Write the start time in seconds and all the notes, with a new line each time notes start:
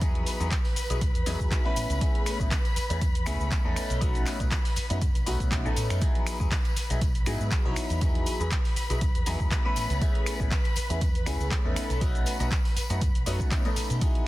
Already playing: E2 B4 B5
0.01 F#3 B3 D#4 E4 G#4, kick, closed hi-hat, tambourine, shaker
0.15 closed hi-hat
0.26 open hi-hat, tambourine, shaker
0.40 E2 F#3 B3 D#4 E4 G#4, tambourine, shaker
0.51 kick, clap, closed hi-hat, tambourine, shaker
0.64 open hi-hat, tambourine
0.76 muted fingered electric bass stroke, open hi-hat, tambourine, shaker
0.90 B1 F#3 B3 D#4 E4 G#4, closed hi-hat, tambourine, shaker
1.01 kick, closed hi-hat, tambourine, shaker
1.15 E2, closed hi-hat, shaker
1.26 E2 F#3 B3 D#4 E4 G#4, open hi-hat, tambourine, shaker
1.40 E2, kick, shaker
1.51 kick, clap, closed hi-hat, tambourine, shaker
1.65 A3 B3 C#4 E4 B4
1.76 A1, open hi-hat, tambourine, shaker
1.90 C#2, closed hi-hat, tambourine, shaker
2.01 A3 B3 C#4 E4 G#4, kick, closed hi-hat, tambourine, shaker
2.15 closed hi-hat
2.26 finger snap, open hi-hat, tambourine, shaker
2.40 A1 A3 B3 C#4 E4 G#4, kick, tambourine, shaker
2.51 kick, clap, closed hi-hat, tambourine, shaker
2.65 closed hi-hat, tambourine
2.76 muted fingered electric bass stroke, open hi-hat, tambourine, shaker
2.90 E2 A3 B3 C#4 E4 G#4, closed hi-hat, tambourine, shaker
3.01 kick, closed hi-hat, tambourine, shaker
3.15 closed hi-hat, shaker
3.26 C#2 A3 B3 C#4 E4 G#4, finger snap, open hi-hat, tambourine, shaker
3.40 C#2, tambourine, shaker
3.51 kick, clap, closed hi-hat, tambourine, shaker
3.64 E2 A3 B3 C#4 D#4 A4
3.76 finger snap, muted fingered electric bass stroke, open hi-hat, tambourine, shaker
3.90 B1, closed hi-hat, tambourine, shaker
4.01 A3 B3 C#4 D#4 F#4, kick, closed hi-hat, tambourine, shaker
4.14 closed hi-hat, tambourine, shaker
4.26 finger snap, clap, open hi-hat, tambourine, shaker
4.40 B1 A3 B3 C#4 D#4 F#4, kick, closed hi-hat, tambourine, shaker
4.51 kick, clap, closed hi-hat, tambourine, shaker
4.65 open hi-hat, tambourine, shaker
4.76 muted fingered electric bass stroke, open hi-hat, tambourine, shaker
4.90 F#2 A3 B3 C#4 D#4 F#4, closed hi-hat, tambourine, shaker
5.01 kick, closed hi-hat, tambourine, shaker
5.15 B1, closed hi-hat, tambourine, shaker
5.26 B1 A3 B3 C#4 D#4 F#4, open hi-hat, tambourine, shaker
5.40 B1, kick, closed hi-hat, tambourine, shaker
5.51 kick, clap, closed hi-hat, tambourine, shaker
5.65 B2 A3 B3 C#4 D#4 A4, shaker
5.76 A2, open hi-hat, tambourine, shaker
5.90 F#2, finger snap, closed hi-hat, tambourine, shaker
6.01 F#3 B3 D#4 E4 G#4 B4 B5, kick, closed hi-hat, tambourine, shaker
6.15 closed hi-hat
6.26 finger snap, open hi-hat, tambourine, shaker
6.40 E2 F#3 B3 D#4 E4 G#4, kick, tambourine, shaker
6.51 kick, clap, closed hi-hat, tambourine, shaker
6.65 closed hi-hat, tambourine
6.76 muted fingered electric bass stroke, open hi-hat, tambourine, shaker
6.90 B1 F#3 B3 D#4 E4 G#4, closed hi-hat, tambourine, shaker
7.01 kick, closed hi-hat, tambourine, shaker
7.15 closed hi-hat, shaker
7.26 G#2 F#3 B3 D#4 E4 G#4, finger snap, open hi-hat, tambourine, shaker
7.40 G#2, tambourine, shaker
7.51 kick, clap, closed hi-hat, tambourine, shaker
7.65 B1 F#3 B3 D#4 E4 C#5
7.76 finger snap, muted fingered electric bass stroke, open hi-hat, tambourine, shaker
7.89 E2, closed hi-hat, tambourine, shaker
8.01 F#3 B3 D#4 E4 G#4, kick, closed hi-hat, tambourine, shaker
8.15 closed hi-hat
8.26 open hi-hat, tambourine, shaker
8.40 E2 F#3 B3 D#4 E4 G#4, tambourine, shaker
8.51 kick, clap, closed hi-hat, tambourine, shaker
8.65 open hi-hat, tambourine
8.76 muted fingered electric bass stroke, open hi-hat, tambourine, shaker
8.90 B1 F#3 B3 D#4 E4 G#4, closed hi-hat, tambourine, shaker
9.01 kick, closed hi-hat, tambourine, shaker
9.15 E2, closed hi-hat, shaker
9.26 E2 F#3 B3 D#4 E4 G#4, open hi-hat, tambourine, shaker
9.40 E2, kick, tambourine, shaker
9.51 kick, clap, closed hi-hat, tambourine, shaker
9.65 A3 B3 C#4 E4 B4
9.76 A1, open hi-hat, tambourine, shaker
9.90 C#2, closed hi-hat, tambourine, shaker
10.01 A3 B3 C#4 E4 G#4, kick, closed hi-hat, tambourine, shaker
10.15 closed hi-hat
10.26 finger snap, open hi-hat, tambourine, shaker
10.40 A1 A3 B3 C#4 E4 G#4, kick, tambourine, shaker
10.51 kick, clap, closed hi-hat, tambourine, shaker
10.64 closed hi-hat, tambourine
10.76 muted fingered electric bass stroke, open hi-hat, tambourine, shaker
10.89 E2 A3 B3 C#4 E4 G#4, closed hi-hat, tambourine, shaker
11.01 kick, closed hi-hat, tambourine, shaker
11.15 closed hi-hat, shaker
11.26 C#2 A3 B3 C#4 E4 G#4, finger snap, open hi-hat, tambourine, shaker
11.40 C#2, tambourine, shaker
11.51 kick, clap, closed hi-hat, tambourine, shaker
11.64 E2 A3 B3 C#4 D#4 A4
11.76 finger snap, muted fingered electric bass stroke, open hi-hat, tambourine, shaker
11.90 B1, closed hi-hat, tambourine, shaker
12.01 A3 B3 C#4 D#4 F#4, kick, closed hi-hat, tambourine, shaker
12.15 closed hi-hat, shaker
12.26 open hi-hat, tambourine, shaker
12.40 B1 A3 B3 C#4 D#4 F#4, closed hi-hat, tambourine, shaker
12.51 kick, clap, closed hi-hat, tambourine, shaker
12.65 open hi-hat, tambourine
12.76 muted fingered electric bass stroke, open hi-hat, tambourine, shaker
12.90 F#2 A3 B3 C#4 D#4 F#4, closed hi-hat, tambourine, shaker
13.01 kick, closed hi-hat, tambourine, shaker
13.15 B1, closed hi-hat, shaker
13.26 F#2 A3 B3 C#4 D#4 F#4, open hi-hat, tambourine, shaker
13.39 kick, tambourine, shaker
13.51 kick, clap, closed hi-hat, tambourine, shaker
13.65 A3 B3 C#4 D#4 A4, closed hi-hat, tambourine
13.76 muted fingered electric bass stroke, open hi-hat, tambourine, shaker
13.90 B2, closed hi-hat, tambourine, shaker
14.01 F#3 B3 D#4 E4 F#4 G#4 F#5, kick, closed hi-hat, tambourine, shaker
14.15 closed hi-hat